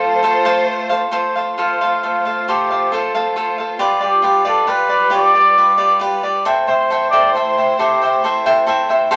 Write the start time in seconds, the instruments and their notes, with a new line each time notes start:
Already playing: violin section A3 F4 C5, cavaquinho F4 A4 C5 F5, trumpet A4
0.23 cavaquinho F4 A4 C5 F5
0.45 cavaquinho F4 A4 C5 F5
0.89 cavaquinho A4 C5 F5
1.11 violin section A3 F4 C5, cavaquinho F4 A4 C5 F5
1.35 cavaquinho A4 C5 F5
1.58 cavaquinho F4 A4 C5 F5, trumpet F4
1.81 cavaquinho F4 A4 C5 F5
2.03 cavaquinho F4 A4 C5 F5
2.25 cavaquinho A4 C5 F5
2.48 cavaquinho F4 A4 C5 F5, trumpet G4
2.70 cavaquinho A4 C5 F5
2.92 cavaquinho F4 A4 C5 F5, trumpet A4
3.15 cavaquinho F4 A4 C5 F5
3.36 cavaquinho F4 A4 C5 F5
3.58 cavaquinho A4 C5 F5
3.79 violin section G3 B4, cavaquinho F4 G4 B4 D5
4.00 cavaquinho G4 B4 D5
4.05 trumpet G4
4.22 cavaquinho F4 G4 B4 D5
4.45 cavaquinho F4 G4 B4 D5, trumpet A4
4.67 cavaquinho F4 G4 B4 D5, trumpet B4
4.89 cavaquinho G4 B4 D5
5.10 cavaquinho F4 G4 B4 D5, trumpet D5
5.34 cavaquinho G4 B4 D5
5.57 cavaquinho F4 G4 B4 D5
5.77 cavaquinho F4 G4 B4 D5
5.99 cavaquinho F4 G4 B4 D5
6.23 cavaquinho G4 B4 D5
6.45 violin section A3 E4 C5, cavaquinho A4 C5 E5 G5
6.67 trumpet C5, cavaquinho C5 E5 G5
6.90 cavaquinho A4 C5 E5 G5
7.10 cavaquinho A4 C5 E5 G5, trumpet D5
7.32 cavaquinho A4 C5, trumpet C5
7.36 cavaquinho E5 G5
7.58 cavaquinho C5 E5 G5
7.79 trumpet G4, cavaquinho A4 C5 E5 G5
8.02 cavaquinho C5 E5 G5
8.24 cavaquinho A4 C5 E5 G5
8.46 cavaquinho A4 C5 E5 G5
8.66 cavaquinho A4 C5 E5 G5
8.89 cavaquinho C5 E5 G5
9.11 violin section G3 F4 A4, cavaquinho A4 C5 F5 G5